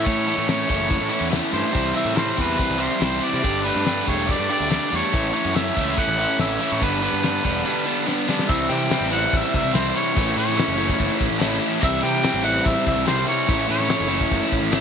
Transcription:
0.05 A2 E3 A3 C#4 E4 C#5, kick, open hi-hat
0.26 A2 E3 A3 C#4 E4, open hi-hat
0.38 A2
0.47 A2 E3 A3 C#4 E4 C#5, snare, open hi-hat
0.68 F#1 A2 E3 A3 C#4 E4, kick, open hi-hat
0.88 A2 E3 A3 C#4 E4, kick, open hi-hat
1.00 A2
1.09 A2 E3 A3 C#4 E4, open hi-hat
1.21 E2
1.30 A2 E3 A3 C#4 E4, snare, open hi-hat
1.52 G2 A2 E3 A3 C#4 E4 C5, open hi-hat
1.72 C2 C3 E3 G3 C4 E4, kick, open hi-hat
1.93 C3 E3 G3 C4 E4 E5, open hi-hat
2.05 A2
2.15 C3 E3 G3 C4 E4 C5, snare, open hi-hat
2.37 E2 C3 E3 G3 C4 E4 B4, kick, open hi-hat
2.57 C3 E3 G3 C4 E4, kick, open hi-hat
2.70 C2
2.78 C3 E3 G3 C4 E4, open hi-hat
2.82 C5
2.91 snare
2.99 C2 C3 E3 G3 C4 E4, snare, open hi-hat
3.04 C5
3.21 C3 E3 G3 C4 E4 D5, open hi-hat
3.33 C3
3.43 G1 G3 A3 D4 G4, kick, open hi-hat
3.64 G3 A3 D4 G4 B4, open hi-hat
3.75 G2
3.85 G3 A3 D4 G4, snare, open hi-hat
4.05 E1 G3 A3 D4 G4 C#5, kick, open hi-hat
4.27 G3 A3 D4 G4, kick, open hi-hat
4.31 D5
4.39 G2
4.49 G3 A3 D4 G4 D5, open hi-hat
4.60 D2
4.70 G3 A3 D4 G4, snare, open hi-hat
4.90 E2 G3 A3 D4 G4, open hi-hat
4.96 C#5
5.11 A1 A2 E3 A3 C#4 E4, kick, open hi-hat
5.33 A2 E3 A3 C#4 E4, open hi-hat
5.45 F#2
5.53 A2 E3 A3 C#4 E4 E5, snare, open hi-hat
5.75 C#2 A2 E3 A3 C#4 E4, kick, open hi-hat
5.97 A2 E3 A3 C#4 E4 F#5, kick, open hi-hat
6.07 A1
6.18 A2 E3 A3 C#4 E4, open hi-hat
6.39 A1 A2 E3 A3 C#4 E4 E5, snare, open hi-hat
6.59 A2 E3 A3 C#4 E4, open hi-hat
6.72 A2 C#5
6.81 G1 G2 D3 G3 B3 D4 B4, kick, open hi-hat
7.01 G2 D3 G3 B3 D4, open hi-hat
7.13 G2
7.22 G2 D3 G3 B3 D4, snare, open hi-hat
7.44 E1 G2 D3 G3 B3 D4, kick, open hi-hat
7.64 G2 D3 G3 B3 D4
7.85 G2 D3 G3 B3 D4
8.06 G2 D3 G3 B3 D4, snare
8.27 G2 D3 G3 B3 D4, snare
8.39 snare
8.48 C2 C3 E3 G3 C4 E4 E5, kick, crash
8.69 C3 G3 C4 E4 G5, ride
8.89 E3 G3 C4 E4, snare, ride
9.01 A1
9.11 G3 C4 E4 F#5, ride
9.33 A1 E5, kick, ride
9.54 C2 E5, kick, ride
9.64 C2
9.73 C2 C3 E3 G3 C4 E4 C5, snare, ride
9.94 G3 C4 E4 C#5, ride
10.15 A1 A2 E3 A3 C#4 E4, kick, ride
10.36 A2 A3 C#4 E4 C#5, ride
10.49 snare
10.56 E3 A3 C#4 E4, snare, ride
10.68 F#1
10.77 A3 C#4 E4, ride
10.89 kick
11.00 F#1, kick, ride
11.21 A1, kick, ride
11.30 A1
11.39 A1 A2 E3 A3 C#4 E4, snare, ride
11.52 snare
11.60 A3 C#4 E4, ride
11.80 C2 C3 E3 G3 C4 E4 E5, kick, crash
12.02 C3 G3 C4 E4 G5, ride
12.22 E3 G3 C4 E4, snare, ride
12.34 A1
12.44 G3 C4 E4 F#5, ride
12.66 A1 E5, kick, ride
12.87 C2 E5, kick, ride
12.97 C2
13.06 C2 C3 E3 G3 C4 E4 C5, snare, ride
13.27 G3 C4 E4 C#5, ride
13.48 A1 A2 E3 A3 C#4 E4, kick, ride
13.68 A2 A3 C#4 E4 C#5, ride
13.80 snare
13.88 E3 A3 C#4 E4, snare, ride
14.00 F#1
14.09 A3 C#4 E4, ride
14.21 kick
14.31 F#1, kick, ride
14.52 A1, kick, ride
14.62 A1
14.71 A1 A2 E3 A3 C#4 E4, snare, ride

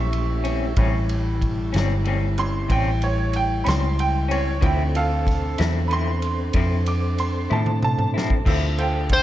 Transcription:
Already playing: A#1 A3 C#4 E4 G4 E5 C#6
0.13 ride
0.44 G3 C4 C#4, ride
0.77 A1 A2 G3 A3 C4 C#4 E4, kick, ride
1.09 ride
1.42 kick, ride
1.73 G1 C4 C#4, snare, ride
1.77 G3
2.05 A2 G3 C4 C#4, ride
2.38 G3 C4 C#4 C6, ride
2.69 A1 A2 G3 C4 C#4 G5, kick, ride
3.02 C#5, ride
3.33 G5, ride
3.64 C#2 C4 C#4 B5, ride
3.68 G3 C6, snare
3.99 G5, ride
4.28 G3 C4 C#4 C#5, ride
4.61 D2 D3 F3 C4 D4 E4 A4 C5 G5, kick, ride
4.95 A4 F5, ride
5.27 kick, snare, ride
5.58 E2 F3 C4 E4, snare, ride
5.88 D3 F3 B5, ride
5.93 C4 E4 C6
6.22 ride
6.53 F2 D3 F3 C4 E4, kick, ride
6.86 D6, ride
7.18 C6, ride
7.50 A2 F3 C4 E4 A5, high tom
7.66 high tom
7.83 A5, mid tom
7.99 mid tom
8.14 F3 C4 E4, snare
8.30 kick
8.45 D2 D3 F3 C4 D4 E4 F4 A4 C5 E5, kick, crash
8.78 F4 A4 C5 G5, ride
9.09 F4 A4 C5 G5, kick, snare, ride

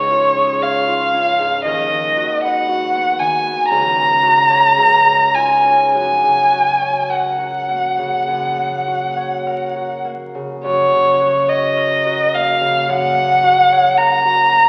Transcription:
Already playing: C#2 G#2 C#4 G#4 C#5
0.11 F4
0.37 G#4
0.62 C#5 F5
0.88 F4
1.13 C#4
1.39 G#2
1.64 D#2 D#5
1.91 D#3
2.17 F#4
2.44 B4 F#5
2.69 F#4
2.96 B3
3.19 D#3 G#5
3.46 B3
3.68 C#2 A#5
3.96 C#3
4.23 F#4
4.49 C#5
4.77 C#2
5.06 G#2
5.35 F4 G#5
5.65 C#5
5.94 F#2 G#5
6.24 C#3
6.51 F#4
6.81 C#5
7.10 A#4 F#5
7.39 F#4
7.68 A#3
7.98 C#3
8.28 F#2
8.58 A#3
8.87 F#4
9.17 C#5
9.47 A#4
9.76 F#4
10.05 A#3
10.35 C#3
10.64 F#2 C#5
10.92 C#3
11.20 F#4
11.49 C#5 D#5
11.77 A#4
12.06 F#4
12.33 A#3 F5
12.61 C#3
12.89 F#2 F#5
13.17 A#3
13.44 F#4
13.72 C#5
13.97 A#4 A#5
14.25 F#4
14.51 A#3

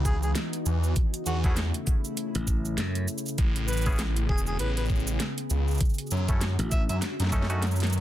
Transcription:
Already playing: C#2 E3 B3 D#4 F#4
0.05 G#4, kick, cross-stick, shaker
0.23 G#4, shaker
0.35 snare, closed hi-hat, shaker
0.53 closed hi-hat, shaker
0.66 E2, shaker
0.84 shaker
0.96 C#3 A3 E4, kick, closed hi-hat, shaker
1.14 closed hi-hat, shaker
1.26 E2 F#4, shaker
1.44 A3 C#4 E4 F#4 G#4, kick, shaker
1.57 snare, closed hi-hat, shaker
1.74 closed hi-hat, shaker
1.87 kick, shaker
2.05 shaker
2.17 closed hi-hat, shaker
2.35 A1, closed hi-hat, shaker
2.47 kick, shaker
2.65 shaker
2.78 F#2, snare, closed hi-hat, shaker
2.95 closed hi-hat, shaker
3.08 shaker
3.18 shaker
3.26 shaker
3.28 shaker
3.38 A1 B3 G#4, kick, closed hi-hat, shaker
3.56 closed hi-hat, shaker
3.68 B4, shaker
3.73 shaker
3.77 shaker
3.81 shaker
3.86 B3 C#4 E4 G#4, kick, shaker
3.92 shaker
3.96 snare, closed hi-hat, shaker
3.99 shaker
4.17 closed hi-hat, shaker
4.29 E1 G#4, kick
4.38 shaker
4.47 G#4, shaker
4.59 A1 B4, closed hi-hat, shaker
4.77 B4, closed hi-hat, shaker
4.79 shaker
4.85 shaker
4.90 kick, shaker
4.95 shaker
5.00 shaker
5.07 shaker
5.20 snare, closed hi-hat, shaker
5.38 closed hi-hat, shaker
5.50 C#2, shaker
5.68 shaker
5.71 shaker
5.74 shaker
5.78 D3 C#4 F#4, kick, closed hi-hat, shaker
5.85 shaker
5.89 shaker
5.94 shaker
5.98 closed hi-hat, shaker
6.07 shaker
6.11 F#2, shaker
6.29 A3 C#4 E4 A4, kick, closed hi-hat, shaker
6.41 snare, closed hi-hat, shaker
6.59 A1, closed hi-hat, shaker
6.71 E5, kick, shaker
6.89 F#2 E5, closed hi-hat, shaker
7.02 D#3 B3 A4, snare, closed hi-hat, shaker
7.20 F#2, snare, closed hi-hat, shaker
7.27 snare
7.30 A3 C#4 D#4 A4, kick, snare, shaker
7.34 snare
7.42 snare
7.50 A3 C#4 D#4 F#4, closed hi-hat, shaker
7.62 snare, closed hi-hat, shaker
7.67 shaker
7.71 shaker
7.76 shaker
7.80 snare, closed hi-hat, shaker
7.84 closed hi-hat
7.90 closed hi-hat
7.93 closed hi-hat, shaker

